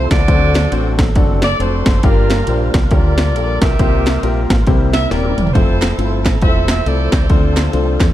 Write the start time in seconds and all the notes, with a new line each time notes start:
Already playing: F3 A3 C4 E4 F4 A4 C5
0.11 C#2 F#4 A4 D5, kick, snare, ride
0.28 D2 D3 F#3 A3 C4 D4 F#4 A4 C5, kick, ride
0.55 snare, ride
0.72 A1 A3 C4 D4 F#4 C5, ride
0.99 kick, snare, ride
1.15 F#1 A3 C4 D4 F#4 A4, kick, ride
1.42 D5, snare, ride
1.59 F1 A3 C4 D4 F#4 A4 C5, ride
1.86 F#1, kick, snare, ride
2.03 G1 G2 G3 A#3 D4 F4 G4 A#4 D5, kick, ride
2.30 snare, ride
2.47 A#1 A#3 D4 F4 G4 C5, ride
2.74 C2, kick, snare, ride
2.91 D2 A#3 D4 F4 G4 A#4 D5, kick, ride
3.18 snare, ride
3.35 A#1 A#3 D4 F4 G4 A4, ride
3.62 B1 G4 A#4 E5, kick, snare, ride
3.79 C2 C3 G3 A#3 C4 F4 G4 A4 C5, kick, ride
3.86 A#4
4.06 snare, ride
4.23 A#1 A#3 C4 F4 G4 A#4, ride
4.50 A1, kick, snare, ride
4.67 C2 C3 G3 A#3 C4 E4 G4 A4 C5, kick, ride
4.74 A#4
4.93 E5, snare, ride
5.10 D#1 A#3 C4 E4 G4 A#4 D5, snare, ride
5.25 high tom
5.37 E1, mid tom, ride
5.47 floor tom
5.53 F1 F3 A3 C4 E4 F4 G4 A4 C5, kick, ride
5.60 A4
5.82 snare, clap, ride
5.98 G1 A3 C4 E4 F4 C5, ride
6.25 A1, kick, snare, clap, ride
6.42 E1 A3 C4 E4 F4 A4 C5 E5, kick, ride
6.68 E5, snare, clap, ride
6.86 C2 A3 C4 E4 F4 A4 D5, ride
7.12 C#2, kick, snare, clap, ride
7.29 D2 D3 F3 A3 C4 D4 F4 A4 C5, kick, ride
7.56 snare, clap, ride
7.73 C2 A3 C4 D4 F4 C5, ride
8.00 E2, kick, snare, clap, ride